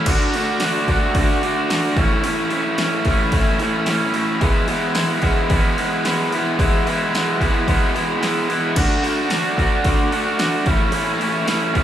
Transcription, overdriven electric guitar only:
0.07 D3 A3 D4 F#4
0.35 D3 A3 D4 F#4
0.62 D3 A3 D4 F#4
0.90 D3 A3 D4 F#4
1.17 D3 A3 D4 F#4
1.42 D3 A3 D4 F#4
1.70 D3 A3 D4 F#4
1.97 A2 E3 A3 C#4 E4
2.23 A2 E3 A3 C#4 E4
2.50 A2 E3 A3 C#4 E4
2.79 A2 E3 A3 C#4 E4
3.06 A2 E3 A3 C#4 E4
3.33 A2 E3 A3 C#4 E4
3.60 A2 E3 A3 C#4 E4
3.87 A2 E3 A3 C#4 E4
4.14 A2 E3 A3 C#4 E4
4.41 E3 G#3 B3 E4
4.67 E3 G#3 B3 E4
4.95 E3 G#3 B3 E4
5.21 E3 G#3 B3 E4
5.50 E3 G#3 B3 E4
5.78 E3 G#3 B3 E4
6.04 E3 G#3 B3 E4
6.32 E3 G#3 B3 E4
6.58 E3 G#3 B3 E4
6.86 E3 G#3 B3 E4
7.14 E3 G#3 B3 E4
7.39 E3 G#3 B3 E4
7.68 E3 G#3 B3 E4
7.94 E3 G#3 B3 E4
8.20 E3 G#3 B3 E4
8.49 E3 G#3 B3 E4
8.76 D3 A3 D4 F#4
9.02 D3 A3 D4 F#4
9.29 D3 A3 D4 F#4
9.55 D3 A3 D4 F#4
9.84 D3 A3 D4 F#4
10.11 D3 A3 D4 F#4
10.39 D3 A3 D4 F#4
10.65 A2 E3 A3 C#4 E4
10.92 A2 E3 A3 C#4 E4
11.18 A2 E3 A3 C#4 E4
11.46 A2 E3 A3 C#4 E4
11.74 A2 E3 A3 C#4 E4

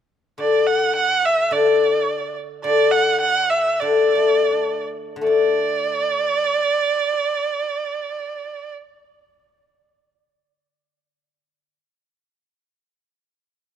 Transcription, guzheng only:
0.38 D3
1.51 D3
2.64 D3
3.81 D3
4.15 A3
4.51 D4
5.16 D3
5.21 A3
5.27 D4

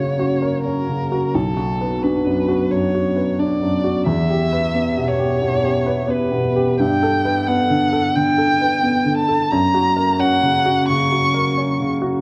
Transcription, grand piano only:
Already playing: F#2 C#3 C#4 F#4 A#4
0.19 F#4
0.42 A#4
0.65 C#4
0.89 C#3
1.12 F#4
1.35 B1
1.57 F#4
1.81 B4
2.04 D4
2.26 F#2
2.48 F#4
2.71 F#2
2.95 F#4
3.17 B4
3.39 D4
3.62 F#2
3.84 F#4
4.06 E2
4.30 G4
4.53 B4
4.75 B3
4.97 B2
5.19 G4
5.42 B2
5.64 G4
5.86 B4
6.08 B3
6.32 B2
6.56 G4
6.80 G2
7.03 A4
7.25 B4
7.48 B3
7.70 D3
7.92 A4
8.16 D3
8.38 A4
8.61 B4
8.83 B3
9.06 D3
9.28 A4
9.52 F#2
9.74 F#4
9.97 A#4
10.19 C#4
10.43 C#3
10.66 F#4
10.90 C#3
11.12 F#4
11.34 A#4
11.57 C#4
11.80 C#3
12.02 F#4

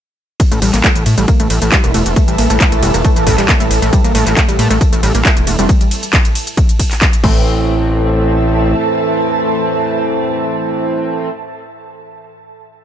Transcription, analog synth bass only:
0.52 A1
0.62 A1
0.74 A1
0.96 A1
1.06 A2
1.18 A1
1.40 A1
1.50 A1
1.62 A1
1.84 E1
1.94 E1
2.06 E1
2.28 A1
2.38 A1
2.50 A1
2.72 A#1
2.83 E1
2.94 E1
3.16 A1
3.27 A1
3.38 A1
3.60 A1
3.71 A1
3.82 A1
4.04 A1
4.15 A1
4.26 A1
4.48 A1
4.59 A2
4.71 A1
4.93 A1
5.03 A1
5.15 A1
5.37 E1
5.47 E1
5.59 E1
7.24 A1

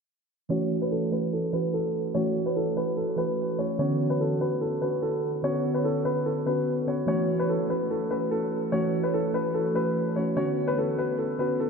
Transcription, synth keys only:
0.49 E3 A3 C#4 F#4
1.11 E3 A3 C#4 F#4
1.53 E3 A3 C#4 F#4
2.15 E3 A3 C#4 F#4
2.75 E3 A3 C#4 F#4
3.16 E3 A3 C#4 F#4
3.59 E3 A3 C#4 F#4
3.79 D3 B3 C#4 F#4
4.39 D3 B3 C#4 F#4
4.81 D3 B3 C#4 F#4
5.43 D3 B3 C#4 F#4
6.05 D3 B3 C#4 F#4
6.46 D3 B3 C#4 F#4
6.87 D3 B3 C#4 F#4
7.06 E3 A3 C#4 F#4
7.69 E3 A3 C#4 F#4
8.10 E3 A3 C#4 F#4
8.72 E3 A3 C#4 F#4
9.33 E3 A3 C#4 F#4
9.74 E3 A3 C#4 F#4
10.16 E3 A3 C#4 F#4
10.36 D3 B3 C#4 F#4
10.97 D3 B3 C#4 F#4
11.38 D3 B3 C#4 F#4

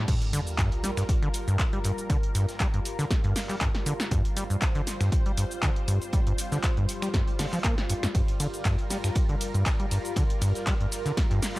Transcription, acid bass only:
0.08 G2
0.33 D3
0.58 G2
0.84 G3
0.97 G2
1.23 D3
1.48 G2
1.73 G3
1.85 G2
2.10 D3
2.35 G2
2.60 G3
2.74 G2
2.99 D3
3.24 G2
3.49 G3
3.61 G2
3.86 D3
4.11 G2
4.37 G3
4.50 G2
4.75 D3
5.01 G2
5.26 G3
5.38 G2
5.63 D3
5.88 G2
6.13 G3
6.27 G2
6.52 D3
6.77 G2
7.02 G3
7.14 G2
7.39 D3
7.53 F3
7.64 A#3
7.90 G2
8.03 G2
8.15 G2
8.40 D3
8.65 G2
8.90 G3
9.04 G2
9.29 D3
9.54 G2
9.80 G3
9.91 G2
10.17 D3
10.42 G2
10.67 G3
10.80 G2
11.06 D3
11.31 G2
11.56 G3

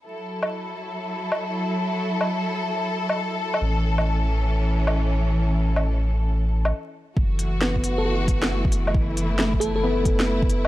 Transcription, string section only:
0.05 F#3 E4 A4
3.61 E3 C#4
7.17 E3 A3 F#4
8.95 E4

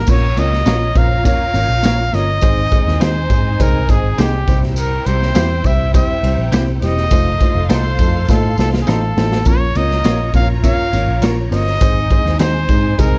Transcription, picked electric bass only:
0.08 A#1
0.37 C#2
0.65 A#1
0.95 A#1
1.54 G#1
1.69 A#1
1.84 A#1
2.13 G1
2.42 G#1
2.87 D#2
3.01 D#2
3.30 G#2
3.60 C2
3.88 G#1
4.18 C2
4.48 C2
5.06 C2
5.36 E2
5.64 C2
6.23 C2
6.38 A#1
6.52 C2
6.82 E1
7.11 F1
7.55 F1
7.70 C2
7.99 F2
8.28 A2
8.58 C2
8.88 A1
9.17 A1
9.46 A#1
9.76 C#2
10.05 A#1
10.34 A#1
10.93 G#1
11.08 A#1
11.22 A#1
11.52 G1
11.81 G#1
12.26 D#2
12.40 D#2
12.69 G#2
12.99 C2

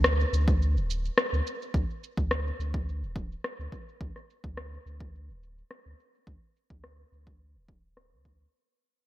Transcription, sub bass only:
Already playing: D2
0.33 D2
0.76 D1
1.33 D2
1.74 D2
2.17 D2
2.59 D2
3.03 D1
3.59 D2
4.01 D2
4.44 D2
4.86 D2
5.29 D1
5.86 D2
6.27 D2
6.70 D2
7.12 D2
7.55 D1
8.12 D2

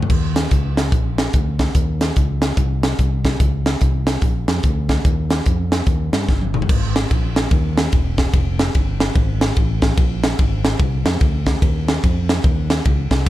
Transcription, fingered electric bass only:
0.10 D#2
0.51 C#2
0.92 A#1
1.34 D2
1.75 D#2
2.17 C#2
2.57 C2
2.99 C2
3.40 C#2
3.81 C2
4.22 A#1
4.48 F2
4.64 D2
5.05 D#2
5.46 F2
5.87 D#2
6.13 G2
6.29 G1
6.69 G#1
7.11 A#1
7.51 D#2
7.93 E1
8.33 F1
8.75 G1
9.16 G#1
9.57 A1
9.98 A#1
10.39 G#1
10.80 C2
11.05 F2
11.21 D2
11.62 D#2
12.04 F2
12.44 D#2
12.86 C#2
13.11 C2

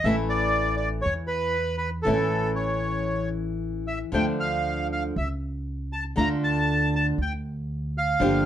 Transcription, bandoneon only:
0.04 E5
0.29 D5
0.77 D5
1.02 C#5
1.27 B4
1.78 B4
2.03 A4
2.56 C#5
3.87 E5
4.14 G5
4.40 F5
4.92 F5
5.18 E5
5.93 A5
6.17 A#5
6.44 A5
6.96 A5
7.22 G5
7.98 F5

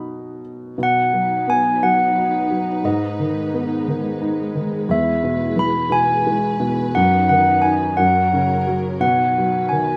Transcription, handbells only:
0.83 F#5
1.50 G#5
1.83 F#5
2.85 D#5
4.91 E5
5.59 B5
5.92 G#5
6.95 F#5
7.29 F#5
7.62 G#5
7.97 F#5
9.01 F#5
9.69 G#5

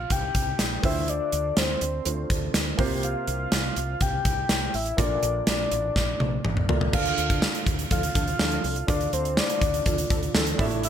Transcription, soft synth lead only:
Already playing: F5
0.12 G5
0.85 E5
1.09 D5
1.58 C5
3.04 F5
4.02 G5
4.75 E5
4.99 D5
5.48 D5
6.94 F5
7.92 F5
8.89 D5
9.13 C5
9.38 D5
10.84 E5

